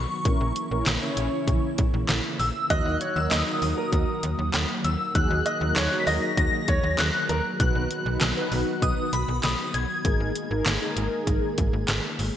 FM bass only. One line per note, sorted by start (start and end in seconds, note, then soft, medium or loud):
0.25 0.37 A#1 loud
0.41 0.52 A#1 loud
0.71 0.83 A#1 loud
0.87 0.98 A#1 loud
1.17 1.29 A#1 medium
1.48 1.59 A#1 loud
1.79 1.90 A#1 loud
1.94 2.05 A#1 loud
2.09 2.21 A#1 loud
2.40 2.51 A#1 medium
2.70 2.82 D#2 loud
2.85 2.97 D#2 medium
3.16 3.28 D#2 loud
3.31 3.43 D#2 loud
3.62 3.74 D#2 loud
3.93 4.04 D#2 loud
4.23 4.35 D#2 loud
4.39 4.50 D#2 loud
4.54 4.66 D#2 loud
4.84 4.96 D#2 loud
5.15 5.27 D#2 loud
5.30 5.42 D#2 loud
5.61 5.73 D#2 loud
5.76 5.88 D#2 loud
6.07 6.19 D#2 medium
6.37 6.49 D#2 loud
6.68 6.80 D#2 loud
6.83 6.95 D#2 loud
6.99 7.10 D#2 loud
7.29 7.41 D#2 loud
7.60 7.72 B1 loud
7.75 7.87 B1 medium
8.06 8.17 B1 loud
8.21 8.33 B1 loud
8.52 8.63 B1 loud
8.82 8.94 B1 loud
9.13 9.25 B1 loud
9.28 9.40 B1 loud
9.44 9.55 B1 loud
9.74 9.86 B1 loud
10.05 10.16 G#1 loud
10.20 10.32 G#1 medium
10.51 10.62 G#1 loud
10.66 10.78 G#1 loud
10.97 11.08 G#1 loud
11.27 11.39 G#1 loud
11.58 11.70 G#1 loud
11.73 11.85 G#1 loud
11.89 12.00 G#1 loud
12.19 12.31 G#1 loud